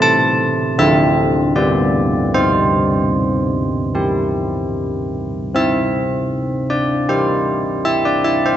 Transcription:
0.00 0.74 A3 medium
0.00 0.74 C4 medium
0.00 0.74 E4 medium
0.00 0.75 A5 loud
0.78 1.54 D3 medium
0.78 1.52 C4 soft
0.78 1.52 F4 medium
0.78 1.53 E5 loud
1.56 2.32 G3 medium
1.56 2.31 B3 soft
1.56 2.31 G4 soft
1.56 2.32 D5 medium
2.34 5.51 C4 medium
2.34 5.11 C5 medium
3.95 5.51 E4 soft
3.95 5.51 G4 soft
5.55 8.57 C4 medium
5.55 6.68 E5 loud
6.70 7.07 D5 medium
7.09 8.57 E4 soft
7.09 8.57 G4 soft
7.09 7.83 C5 medium
7.85 8.05 E5 medium
8.05 8.25 D5 medium
8.24 8.44 E5 medium
8.46 8.57 C5 medium

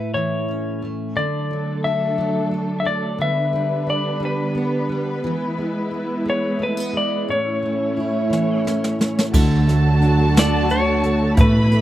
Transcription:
0.00 1.17 A2 medium
0.00 0.82 A3 soft
0.00 1.23 E4 soft
0.00 0.14 B4 medium
0.14 1.16 E3 medium
0.14 0.86 C#5 medium
0.48 1.23 C#4 soft
0.82 1.23 A3 soft
1.15 3.18 D3 medium
1.15 3.18 F#3 medium
1.15 3.18 A3 medium
1.15 3.18 D4 medium
1.15 3.18 A4 medium
1.15 1.80 D5 medium
1.51 2.17 F#3 soft
1.84 3.27 D4 soft
1.84 2.48 E5 medium
2.18 2.84 F#3 medium
2.51 3.27 A3 soft
2.80 2.86 E5 medium
2.85 3.26 F#3 soft
2.85 3.18 D5 medium
3.18 5.24 D3 medium
3.18 5.22 D3 medium
3.18 5.22 G3 medium
3.18 7.25 B3 medium
3.18 5.23 D4 medium
3.18 7.25 B4 medium
3.18 3.89 E5 medium
3.53 4.19 G3 soft
3.87 5.30 D4 soft
3.87 4.21 D5 medium
4.20 4.88 G3 medium
4.25 4.96 B4 medium
4.55 5.30 B3 soft
4.89 5.31 G3 soft
5.24 8.30 E3 medium
5.24 7.28 G#3 medium
5.24 7.27 E4 medium
5.58 6.24 G#3 soft
5.91 7.35 E4 medium
6.26 6.92 G#3 medium
6.30 6.63 C#5 medium
6.59 6.77 A3 soft
6.63 6.97 B4 medium
6.77 7.35 B3 soft
6.93 7.35 G#3 soft
6.97 7.30 D5 medium
7.28 9.33 A2 medium
7.28 9.31 A3 medium
7.28 9.31 C#4 medium
7.28 9.31 E4 medium
7.28 9.31 C#5 medium
7.28 8.62 C#5 medium
7.63 8.99 A3 soft
7.97 9.40 E4 medium
8.30 9.34 E3 medium
8.30 snare soft
8.65 9.40 C#4 soft
8.65 snare medium
8.84 snare medium
8.99 9.67 A3 soft
8.99 snare medium
9.19 snare medium
9.33 11.33 D2 loud
9.33 11.35 D3 medium
9.33 11.37 D3 medium
9.33 11.36 F#3 medium
9.33 11.81 A3 medium
9.33 11.35 F#4 medium
9.33 11.33 A5 medium
9.33 kick loud
9.33 crash medium
9.67 10.34 A3 medium
9.67 snare soft
9.67 closed hi-hat medium
10.01 11.44 D4 medium
10.01 closed hi-hat soft
10.35 11.03 A3 medium
10.35 snare loud
10.35 closed hi-hat medium
10.39 10.71 D5 medium
10.69 11.44 F#4 medium
10.69 11.34 C#5 medium
10.69 closed hi-hat medium
11.03 11.37 A3 medium
11.03 closed hi-hat medium
11.36 11.81 A1 loud
11.36 11.81 B2 medium
11.36 11.81 E3 medium
11.36 11.81 A3 medium
11.36 11.81 E4 medium
11.36 11.81 B5 loud
11.36 kick loud
11.36 closed hi-hat medium
11.41 11.81 B4 medium
11.72 11.81 B3 medium
11.72 closed hi-hat medium

